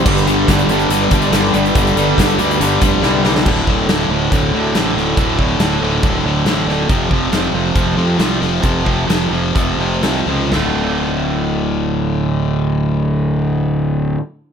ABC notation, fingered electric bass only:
X:1
M:4/4
L:1/8
Q:1/4=140
K:Ddor
V:1 name="Fingered electric bass" clef=bass
G,,,2 G,,, G,,, G,,, G,,, G,,, G,,, | G,,, G,,, G,,, D,, G,,, F,,, C,,2 | D,,, D,,, D,,, D,,, D,,, D,, A,,, D,,, | D,,,2 D,,, D,,, D,,, D,,, A,,, D,,, |
F,,, F,,, F,,, F,,, F,,, F,, C,, F,,, | F,,,2 F,,, F,,, F,,, F,,, C,, ^C,, | D,,,8- | D,,,8 |]